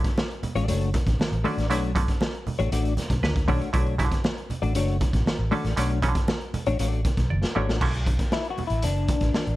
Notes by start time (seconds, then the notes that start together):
Already playing: D3 F#3 A3 E4
0.04 kick, snare, closed hi-hat
0.18 snare, high conga
0.31 closed hi-hat
0.43 muted fingered electric bass stroke, closed hi-hat, low conga
0.55 A1 A3 D4 F#4 D5, closed hi-hat
0.68 F#1 A3 D4 F#4 C#5, closed hi-hat, muted conga
0.81 closed hi-hat
0.94 kick, snare, closed hi-hat, muted conga, low conga
1.07 A1, kick, snare, closed hi-hat
1.20 snare, high conga
1.32 A1, closed hi-hat
1.44 D3 F#3 A3 C#4 D4 F#4 D5, open hi-hat, high conga
1.57 A1, snare, closed hi-hat
1.70 B1 D3 F#3 A3 D4 E4 F#4 C#5, closed hi-hat
1.95 D3 F#3 A3 C#4, kick, closed hi-hat, muted conga
2.08 kick, snare, closed hi-hat
2.21 snare, high conga
2.35 closed hi-hat
2.46 muted fingered electric bass stroke, open hi-hat, low conga
2.59 A1 A3 D4 F#4 C#5, closed hi-hat
2.71 A1 A3 D4 F#4 D5, closed hi-hat, muted conga
2.85 closed hi-hat
2.97 snare, closed hi-hat, muted conga, low conga
3.10 B1, kick, snare, closed hi-hat
3.23 D2 B4, snare, high conga
3.36 kick, snare, closed hi-hat
3.48 B1 D3 F#3 A3 C#4 D4 F#4 C#5, kick, open hi-hat, high conga
3.61 closed hi-hat
3.73 B1 D3 F#3 A3 D4 E4 F#4 C#5, kick, closed hi-hat, muted conga
3.86 closed hi-hat
3.98 C#3 F#3 A3 E4, kick, closed hi-hat, muted conga
4.05 D3
4.12 kick, snare, closed hi-hat
4.24 snare, high conga
4.38 closed hi-hat
4.50 muted fingered electric bass stroke, closed hi-hat, low conga
4.62 A1 A3 D4 F#4 D5, closed hi-hat
4.75 F#1 A3 D4 F#4 C#5, closed hi-hat, muted conga
4.88 closed hi-hat
5.01 kick, snare, closed hi-hat, muted conga, low conga
5.13 A1, kick, snare, closed hi-hat
5.26 snare, high conga
5.39 A1
5.51 D3 F#3 A3 C#4 D4 F#4 D5, open hi-hat, high conga
5.64 A1, snare, closed hi-hat
5.77 B1 D3 F#3 A3 C#4 D4 F#4 C#5, closed hi-hat, muted conga
5.90 closed hi-hat
6.02 C#3 F#3 A3 C#4, kick, closed hi-hat, muted conga
6.08 D3
6.15 kick, snare, closed hi-hat
6.28 snare, high conga
6.41 closed hi-hat
6.54 muted fingered electric bass stroke, closed hi-hat, low conga
6.66 A1 A3 D4 F#4 C#5, closed hi-hat
6.79 A1 A3 D4 F#4 D5, closed hi-hat, muted conga
6.92 closed hi-hat
7.05 kick, snare, closed hi-hat, muted conga, low conga
7.17 B1, kick, snare, closed hi-hat
7.30 F#1 D5, high conga
7.44 snare
7.55 G#1 D3 F#3 A3 C#4 D4 F#4 C#5, high conga
7.69 A1, snare
7.81 B1 D3 F#3 A3 C#4, kick, crash, muted conga
7.94 closed hi-hat
8.06 kick, closed hi-hat, muted conga
8.19 kick, snare, closed hi-hat
8.32 E4, snare, high conga
8.45 closed hi-hat
8.50 F#4
8.57 muted fingered electric bass stroke, open hi-hat, low conga
8.67 A1 E4, closed hi-hat
8.82 F#1 D4, closed hi-hat, muted conga
9.08 kick, snare, closed hi-hat, muted conga, low conga
9.21 A1, kick, snare, closed hi-hat
9.34 muted fingered electric bass stroke, snare, high conga
9.47 A1, closed hi-hat